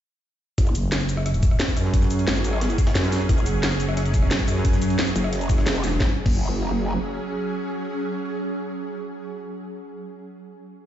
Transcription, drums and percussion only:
0.58 kick loud
0.58 closed hi-hat loud
0.58 closed hi-hat medium
0.67 shaker soft
0.75 closed hi-hat medium
0.75 shaker medium
0.92 snare loud
0.92 closed hi-hat medium
1.00 closed hi-hat soft
1.00 shaker soft
1.09 closed hi-hat medium
1.09 shaker medium
1.17 cross-stick soft
1.26 cross-stick soft
1.26 closed hi-hat loud
1.26 closed hi-hat medium
1.34 closed hi-hat soft
1.34 shaker soft
1.43 kick loud
1.43 closed hi-hat medium
1.43 shaker medium
1.51 cross-stick soft
1.60 snare loud
1.60 closed hi-hat loud
1.60 closed hi-hat medium
1.68 kick medium
1.68 snare medium
1.68 shaker soft
1.77 cross-stick soft
1.77 closed hi-hat medium
1.77 open hi-hat medium
1.77 shaker medium
1.85 snare soft
1.94 kick loud
1.94 closed hi-hat loud
2.02 snare soft
2.02 shaker soft
2.11 closed hi-hat medium
2.11 shaker medium
2.19 closed hi-hat soft
2.27 snare loud
2.27 closed hi-hat medium
2.36 closed hi-hat soft
2.36 shaker soft
2.44 closed hi-hat medium
2.44 shaker medium
2.53 cross-stick medium
2.61 snare loud
2.61 closed hi-hat medium
2.61 closed hi-hat loud
2.70 closed hi-hat soft
2.70 shaker soft
2.78 kick loud
2.78 closed hi-hat medium
2.78 shaker medium
2.87 cross-stick soft
2.87 snare loud
2.87 closed hi-hat medium
2.95 snare loud
2.95 closed hi-hat medium
3.04 cross-stick soft
3.04 closed hi-hat medium
3.04 shaker soft
3.12 snare soft
3.12 closed hi-hat medium
3.12 open hi-hat medium
3.12 shaker medium
3.21 closed hi-hat soft
3.29 kick loud
3.29 closed hi-hat loud
3.29 closed hi-hat medium
3.38 shaker soft
3.46 closed hi-hat medium
3.46 shaker medium
3.63 snare loud
3.63 closed hi-hat medium
3.72 closed hi-hat soft
3.72 shaker soft
3.80 closed hi-hat medium
3.80 shaker medium
3.89 cross-stick soft
3.97 cross-stick soft
3.97 closed hi-hat medium
4.06 closed hi-hat soft
4.06 shaker soft
4.14 kick loud
4.14 closed hi-hat medium
4.14 shaker medium
4.22 cross-stick soft
4.31 snare loud
4.31 closed hi-hat medium
4.39 kick medium
4.39 snare medium
4.39 shaker soft
4.48 cross-stick soft
4.48 closed hi-hat medium
4.48 open hi-hat medium
4.48 shaker medium
4.56 snare soft
4.65 kick loud
4.65 closed hi-hat medium
4.73 snare medium
4.73 shaker soft
4.82 closed hi-hat medium
4.82 shaker medium
4.90 closed hi-hat soft
4.99 snare loud
4.99 closed hi-hat medium
5.07 closed hi-hat soft
5.07 shaker soft
5.16 closed hi-hat medium
5.16 shaker medium
5.24 cross-stick soft
5.33 closed hi-hat medium
5.41 closed hi-hat soft
5.41 shaker soft
5.50 kick loud
5.50 snare soft
5.50 closed hi-hat medium
5.50 shaker medium
5.58 cross-stick soft
5.58 snare medium
5.67 snare loud
5.67 closed hi-hat medium
5.75 cross-stick soft
5.75 shaker soft
5.83 snare soft
5.83 closed hi-hat medium
5.83 open hi-hat medium
5.83 shaker medium
5.92 closed hi-hat soft
6.00 kick loud
6.00 snare medium
6.26 kick loud
6.26 crash medium

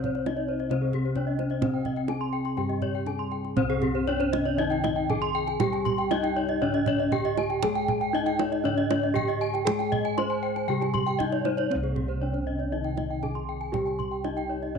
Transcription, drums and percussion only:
0.04 kendang slap soft
0.04 kendang low soft
0.15 kendang slap soft
0.26 kendang slap soft
0.26 kendang high soft
0.59 kendang slap soft
0.71 kendang slap soft
0.71 kendang high soft
0.93 kendang slap soft
0.93 kendang low soft
1.15 kendang slap soft
1.15 kendang low soft
1.39 kendang high soft
1.50 kendang slap soft
1.62 kendang high soft
1.62 kendang low medium
1.85 kendang slap soft
1.85 kendang low soft
1.96 kendang slap soft
2.08 kendang slap soft
2.08 kendang high soft
2.45 kendang slap soft
2.57 kendang slap soft
2.70 kendang slap soft
2.82 kendang slap soft
2.82 kendang low soft
3.06 kendang slap soft
3.06 kendang low soft
3.31 kendang slap soft
3.45 kendang slap soft
3.57 kendang low medium
3.70 kendang slap soft
3.82 kendang low medium
4.20 kendang slap soft
4.33 kendang high medium
4.46 kendang slap soft
4.72 kendang slap soft
4.84 kendang high medium
4.84 kendang low soft
5.10 kendang low medium
5.22 kendang slap soft
5.48 kendang slap soft
5.60 kendang high medium
5.60 kendang low medium
5.73 kendang slap soft
5.86 kendang low medium
6.11 kendang high medium
6.24 kendang slap soft
6.49 kendang slap soft
6.74 kendang slap soft
6.86 kendang low medium
7.12 kendang low medium
7.25 kendang slap soft
7.37 kendang high medium
7.50 kendang slap soft
7.63 kendang low loud
7.75 kendang slap soft
7.88 kendang low medium
8.27 kendang slap soft
8.39 kendang high medium
8.53 kendang slap soft
8.78 kendang slap soft
8.91 kendang high medium
9.16 kendang low medium
9.30 kendang slap soft
9.55 kendang slap soft
9.67 kendang high medium
9.67 kendang low loud
9.80 kendang slap soft
9.92 kendang low medium
10.05 kendang slap soft
10.18 kendang high medium
10.56 kendang slap soft
10.82 kendang slap soft
10.94 kendang low medium
11.08 kendang slap soft
11.20 kendang low medium
11.32 kendang slap soft
11.45 kendang high medium
11.58 kendang slap soft
11.71 kendang low soft
11.84 kendang slap soft
11.96 kendang low soft
12.34 kendang slap soft
12.60 kendang slap soft
12.84 kendang slap soft
12.97 kendang high soft
12.97 kendang low soft
13.23 kendang low soft
13.35 kendang slap soft
13.61 kendang slap soft
13.74 kendang high soft
13.74 kendang low soft
13.87 kendang slap soft
14.00 kendang low soft
14.24 kendang high soft
14.38 kendang slap soft
14.63 kendang slap soft

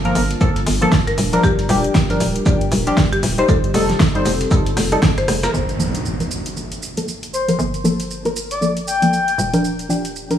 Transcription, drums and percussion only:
0.05 closed hi-hat soft
0.15 open hi-hat loud
0.15 shaker medium
0.31 closed hi-hat medium
0.31 closed hi-hat soft
0.41 kick loud
0.41 shaker medium
0.56 closed hi-hat soft
0.67 open hi-hat loud
0.67 open hi-hat medium
0.82 closed hi-hat medium
0.92 kick loud
0.92 snare loud
0.92 shaker medium
1.07 closed hi-hat medium
1.07 closed hi-hat soft
1.18 open hi-hat loud
1.18 shaker medium
1.33 closed hi-hat medium
1.43 kick loud
1.43 shaker medium
1.59 closed hi-hat soft
1.69 open hi-hat loud
1.69 shaker medium
1.84 closed hi-hat medium
1.95 kick loud
1.95 snare loud
1.95 shaker medium
2.10 closed hi-hat soft
2.20 open hi-hat loud
2.20 shaker medium
2.36 closed hi-hat medium
2.46 kick loud
2.46 shaker medium
2.61 closed hi-hat medium
2.72 open hi-hat loud
2.72 shaker medium
2.87 closed hi-hat medium
2.97 kick loud
2.97 snare loud
2.97 shaker medium
3.13 closed hi-hat soft
3.23 snare soft
3.23 open hi-hat loud
3.23 shaker medium
3.38 closed hi-hat medium
3.49 kick loud
3.49 shaker medium
3.64 closed hi-hat soft
3.74 open hi-hat loud
3.74 shaker medium
3.90 snare soft
3.90 closed hi-hat medium
4.00 kick loud
4.00 snare loud
4.00 shaker medium
4.15 closed hi-hat soft
4.26 open hi-hat loud
4.26 shaker medium
4.41 closed hi-hat soft
4.41 closed hi-hat medium
4.51 kick loud
4.51 shaker medium
4.66 closed hi-hat medium
4.66 closed hi-hat soft
4.77 cross-stick medium
4.77 open hi-hat loud
4.77 open hi-hat medium
4.92 cross-stick medium
4.92 closed hi-hat medium
5.02 kick loud
5.02 cross-stick medium
5.02 snare loud
5.02 shaker medium
5.18 cross-stick medium
5.18 closed hi-hat medium
5.18 closed hi-hat soft
5.28 cross-stick loud
5.28 open hi-hat loud
5.28 shaker medium
5.43 cross-stick medium
5.43 snare loud
5.43 closed hi-hat medium
5.43 shaker medium
5.54 shaker soft
5.69 closed hi-hat soft
5.69 shaker soft
5.80 shaker medium
5.95 closed hi-hat medium
5.95 shaker soft
6.06 shaker soft
6.20 closed hi-hat soft
6.20 shaker soft
6.31 shaker medium
6.46 closed hi-hat medium
6.46 shaker soft
6.57 shaker soft
6.72 closed hi-hat soft
6.72 shaker soft
6.83 shaker medium
6.97 closed hi-hat medium
6.97 shaker soft
7.08 shaker soft
7.23 closed hi-hat soft
7.23 shaker soft
7.34 shaker medium
7.49 closed hi-hat medium
7.49 shaker soft
7.59 shaker soft
7.74 closed hi-hat soft
7.74 shaker soft
7.85 shaker medium
8.00 closed hi-hat medium
8.00 shaker soft
8.11 shaker soft
8.25 closed hi-hat soft
8.25 shaker soft
8.36 shaker medium
8.51 closed hi-hat medium
8.51 shaker soft
8.62 shaker soft
8.77 closed hi-hat soft
8.77 shaker soft
8.88 shaker medium
9.02 closed hi-hat medium
9.02 shaker soft
9.13 shaker soft
9.28 closed hi-hat soft
9.28 shaker soft
9.39 shaker medium
9.54 closed hi-hat medium
9.54 shaker soft
9.65 shaker soft
9.79 closed hi-hat soft
9.79 shaker soft
9.90 shaker medium
10.05 closed hi-hat medium
10.05 shaker soft
10.16 shaker soft
10.31 closed hi-hat soft
10.31 shaker soft

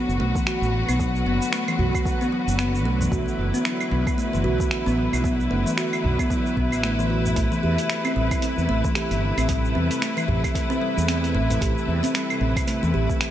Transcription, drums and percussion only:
0.10 cabasa soft
0.35 kick medium
0.35 cabasa medium
0.47 finger snap loud
0.47 cabasa soft
0.63 cabasa soft
0.89 cabasa medium
0.89 claves medium
0.99 kick loud
0.99 cabasa medium
1.16 cabasa soft
1.42 cabasa medium
1.53 finger snap medium
1.53 cabasa medium
1.68 cabasa soft
1.68 claves medium
1.79 udu medium
1.94 kick loud
1.94 cabasa medium
1.94 claves medium
2.05 kick loud
2.05 cabasa medium
2.22 cabasa soft
2.48 cabasa medium
2.59 finger snap medium
2.59 cabasa medium
2.75 cabasa soft
3.00 udu medium
3.00 cabasa medium
3.12 kick loud
3.12 cabasa medium
3.28 cabasa soft
3.54 cabasa medium
3.65 finger snap loud
3.65 cabasa medium
3.80 cabasa soft
3.80 claves medium
4.07 kick loud
4.07 cabasa medium
4.07 claves medium
4.19 cabasa medium
4.34 cabasa soft
4.60 kick loud
4.60 cabasa medium
4.71 finger snap medium
4.71 cabasa medium
4.87 cabasa soft
5.13 cabasa medium
5.13 claves medium
5.24 kick loud
5.24 cabasa medium
5.40 cabasa soft
5.67 cabasa medium
5.78 finger snap medium
5.78 cabasa medium
5.93 cabasa soft
5.93 claves medium
6.04 udu medium
6.19 kick loud
6.19 cabasa medium
6.19 claves medium
6.30 kick medium
6.30 cabasa medium
6.46 cabasa soft
6.57 kick medium
6.72 cabasa medium
6.72 claves medium
6.83 finger snap medium
6.83 cabasa medium
6.99 cabasa soft
7.26 udu medium
7.26 cabasa medium
7.36 kick loud
7.36 closed hi-hat medium
7.36 cabasa medium
7.52 cabasa soft
7.78 closed hi-hat soft
7.78 cabasa medium
7.90 finger snap medium
7.90 closed hi-hat medium
7.90 cabasa soft
8.05 cabasa soft
8.05 claves medium
8.31 kick loud
8.31 closed hi-hat soft
8.31 cabasa medium
8.31 claves medium
8.42 closed hi-hat medium
8.42 cabasa soft
8.58 cabasa soft
8.84 kick loud
8.84 cabasa medium
8.95 finger snap medium
8.95 closed hi-hat medium
8.95 cabasa soft
9.11 closed hi-hat soft
9.11 cabasa soft
9.38 closed hi-hat soft
9.38 cabasa medium
9.38 claves medium
9.49 kick loud
9.49 closed hi-hat medium
9.49 cabasa medium
9.65 cabasa soft
9.91 closed hi-hat soft
9.91 cabasa medium
10.02 finger snap medium
10.02 closed hi-hat medium
10.02 cabasa medium
10.18 cabasa soft
10.18 claves medium
10.29 udu medium
10.44 kick loud
10.44 closed hi-hat soft
10.44 cabasa medium
10.44 claves medium
10.55 kick medium
10.55 closed hi-hat medium
10.55 cabasa soft
10.71 cabasa soft
10.98 cabasa medium
11.08 finger snap medium
11.08 closed hi-hat medium
11.08 cabasa medium
11.24 closed hi-hat soft
11.24 cabasa soft
11.50 closed hi-hat soft
11.50 udu medium
11.50 cabasa medium
11.61 kick loud
11.61 closed hi-hat medium
11.61 cabasa soft
11.78 cabasa soft
12.04 closed hi-hat soft
12.04 cabasa medium
12.15 finger snap medium
12.15 closed hi-hat medium
12.15 cabasa medium
12.30 cabasa soft
12.30 claves medium
12.56 kick loud
12.56 closed hi-hat soft
12.56 cabasa medium
12.56 claves medium
12.68 closed hi-hat medium
12.68 cabasa soft
12.84 cabasa soft
13.09 kick medium
13.09 cabasa medium
13.21 finger snap medium
13.21 closed hi-hat medium
13.21 cabasa soft

